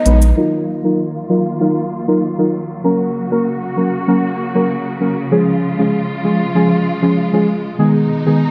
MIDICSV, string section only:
0, 0, Header, 1, 2, 480
1, 0, Start_track
1, 0, Key_signature, -6, "minor"
1, 0, Tempo, 618557
1, 285, Time_signature, 4, 2, 24, 8
1, 6603, End_track
2, 0, Start_track
2, 0, Title_t, "String section"
2, 0, Program_c, 0, 48
2, 0, Note_on_c, 0, 51, 80
2, 0, Note_on_c, 0, 56, 77
2, 0, Note_on_c, 0, 59, 88
2, 0, Note_on_c, 0, 63, 95
2, 252, Note_off_c, 0, 56, 0
2, 264, Note_off_c, 0, 51, 0
2, 264, Note_off_c, 0, 59, 0
2, 264, Note_off_c, 0, 63, 0
2, 284, Note_on_c, 0, 51, 76
2, 284, Note_on_c, 0, 54, 73
2, 284, Note_on_c, 0, 58, 70
2, 285, Note_on_c, 0, 65, 88
2, 2185, Note_off_c, 0, 51, 0
2, 2185, Note_off_c, 0, 58, 0
2, 2185, Note_off_c, 0, 65, 0
2, 2205, Note_on_c, 0, 66, 89
2, 2206, Note_on_c, 0, 58, 73
2, 2207, Note_on_c, 0, 49, 78
2, 4093, Note_off_c, 0, 54, 0
2, 4106, Note_off_c, 0, 58, 0
2, 4106, Note_off_c, 0, 66, 0
2, 4124, Note_on_c, 0, 53, 69
2, 4125, Note_on_c, 0, 56, 73
2, 4126, Note_on_c, 0, 65, 86
2, 6015, Note_off_c, 0, 49, 0
2, 6025, Note_off_c, 0, 53, 0
2, 6026, Note_off_c, 0, 65, 0
2, 6045, Note_on_c, 0, 47, 80
2, 6045, Note_on_c, 0, 51, 68
2, 6045, Note_on_c, 0, 63, 84
2, 6603, Note_off_c, 0, 47, 0
2, 6603, Note_off_c, 0, 51, 0
2, 6603, Note_off_c, 0, 56, 0
2, 6603, Note_off_c, 0, 63, 0
2, 6603, End_track
0, 0, End_of_file